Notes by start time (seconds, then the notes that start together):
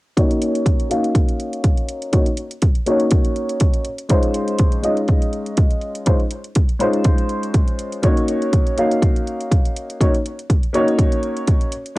0.16 A#3 C#4 D#4 F#4 C#5, kick, closed hi-hat
0.30 closed hi-hat
0.41 closed hi-hat
0.55 closed hi-hat
0.66 kick, closed hi-hat
0.80 closed hi-hat
0.90 A#3 C#4 D#4 F#4 F5, closed hi-hat
1.04 closed hi-hat
1.15 kick, closed hi-hat
1.29 closed hi-hat
1.40 closed hi-hat
1.53 closed hi-hat
1.64 kick, closed hi-hat
1.78 closed hi-hat
1.89 closed hi-hat
2.02 closed hi-hat
2.12 A#3 C#4 D#4 F#4 C#5, kick, closed hi-hat
2.26 closed hi-hat
2.37 closed hi-hat
2.51 closed hi-hat
2.62 kick, closed hi-hat
2.75 closed hi-hat
2.86 A#3 C#4 D#4 F#4 C#5, closed hi-hat
3.00 closed hi-hat
3.11 kick, closed hi-hat
3.25 closed hi-hat
3.36 closed hi-hat
3.49 closed hi-hat
3.60 kick, closed hi-hat
3.74 closed hi-hat
3.85 closed hi-hat
3.98 closed hi-hat
4.09 G#3 C#4 D#4 F4 C5, kick, closed hi-hat
4.23 closed hi-hat
4.34 closed hi-hat
4.48 closed hi-hat
4.59 kick, closed hi-hat
4.72 closed hi-hat
4.82 G#3 C#4 D#4 F4 D#5, closed hi-hat
4.97 closed hi-hat
5.08 kick, closed hi-hat
5.22 closed hi-hat
5.33 closed hi-hat
5.46 closed hi-hat
5.57 kick, closed hi-hat
5.71 closed hi-hat
5.82 closed hi-hat
5.95 closed hi-hat
6.06 G#3 C#4 D#4 F4 C5, kick, closed hi-hat
6.20 closed hi-hat
6.31 closed hi-hat
6.44 closed hi-hat
6.55 kick, closed hi-hat
6.69 closed hi-hat
6.79 G#3 C#4 D#4 F4 C5, closed hi-hat
6.94 closed hi-hat
7.05 kick, closed hi-hat
7.18 closed hi-hat
7.29 closed hi-hat
7.43 closed hi-hat
7.54 kick, closed hi-hat
7.68 closed hi-hat
7.79 closed hi-hat
7.92 closed hi-hat
8.02 A#3 C#4 D#4 F#4 C#5, kick, closed hi-hat
8.17 closed hi-hat
8.28 closed hi-hat
8.42 closed hi-hat
8.53 kick, closed hi-hat
8.66 closed hi-hat
8.77 A#3 C#4 D#4 F#4 F5, closed hi-hat
8.91 closed hi-hat
9.02 kick, closed hi-hat
9.16 closed hi-hat
9.27 closed hi-hat
9.40 closed hi-hat
9.51 kick, closed hi-hat
9.65 closed hi-hat
9.76 closed hi-hat
9.90 closed hi-hat
10.00 A#3 C#4 D#4 F#4 C#5, kick, closed hi-hat
10.14 closed hi-hat
10.25 closed hi-hat
10.39 closed hi-hat
10.49 kick, closed hi-hat
10.63 closed hi-hat
10.73 A#3 C#4 D#4 F#4 C#5, closed hi-hat
10.88 closed hi-hat
10.99 kick, closed hi-hat
11.12 closed hi-hat
11.23 closed hi-hat
11.37 closed hi-hat
11.47 kick, closed hi-hat
11.61 closed hi-hat
11.72 closed hi-hat
11.86 closed hi-hat